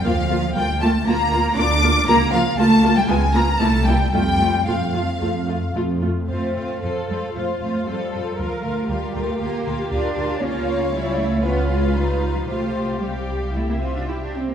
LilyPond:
<<
  \new Staff \with { instrumentName = "Violin section" } { \time 4/4 \key f \major \tempo 4 = 116 f''4 g''8 a''8 bes''4 d'''4 | bes''8 f''8 a''8. g''16 aes''8 bes''8 a''8 g''8 | g''4 f''2 r4 | f''8 f''8 f''8 f''8 f''8 f''8 f''8 f''8 |
f''8 f''8 f''8 f''8 f''8 f''8 f''8 f''8 | f''2 f''2 | f''4 f''4 e''4. r8 | }
  \new Staff \with { instrumentName = "Violin section" } { \time 4/4 \key f \major << { f''4 g''8 a''8 bes''4 d'''4 | bes''8 f''8 a''8. g''16 aes''8 bes''8 a''8 g''8 | g''4 f''2 r4 | c''8 c''8 c''8 c''8 c''8 c''8 c''8 c''8 |
bes'8 bes'8 bes'8 bes'8 bes'8 bes'8 bes'8 bes'8 | des''2 ces''2 | c''4 g'4 e'8 f'8 g'8 g'8 | } \\ { r1 | r1 | r1 | f'8 f'8 f'8 f'8 f'8 f'8 f'8 f'8 |
f'8 f'8 f'8 f'8 f'8 f'8 f'8 f'8 | des'2 des'4 ees'4 | f'4 r2. | } >> }
  \new Staff \with { instrumentName = "Viola section" } { \time 4/4 \key f \major <bes f'>8 <bes f'>8 <bes f'>8 <bes f'>8 <bes f'>8 <bes f'>8 <bes f'>8 <bes f'>8 | <bes f'>8 <bes f'>8 <bes f'>8 <bes f'>8 <ces' f'>8 <ces' f'>8 <bes e'>8 <bes e'>8 | <a f'>8 <a f'>8 <a f'>8 <a f'>8 <a f'>8 <a f'>8 <a f'>8 <a f'>8 | c'4 a'4 f'4 a'4 |
bes'4 g'2. | f'4 e'4 f'2 | g'2.~ g'8 r8 | }
  \new Staff \with { instrumentName = "Cello section" } { \time 4/4 \key f \major f4 g8 a8 bes4 d'4 | bes8 f8 a8. g16 aes8 bes8 a8 g8 | g4 f2 r4 | a4 f8 g8 a8 a8 g4 |
f8 a8 g8 a8 bes4 d'4 | bes4 g8 a8 ces'8 aes8 g8. f16 | a4 g4 a16 bes16 c'16 d'16 e'16 d'16 c'16 bes16 | }
  \new Staff \with { instrumentName = "Double bass section" } { \clef bass \time 4/4 \key f \major d,4 d,4 d,4 d,4 | des,4 des,4 des,4 c,4 | f,4 f,4 f,4 f,4 | f,8 f,8 f,8 f,8 f,8 f,8 f,8 f,8 |
d,8 d,8 d,8 d,8 d,8 d,8 d,8 d,8 | des,1 | c,2.~ c,8 r8 | }
>>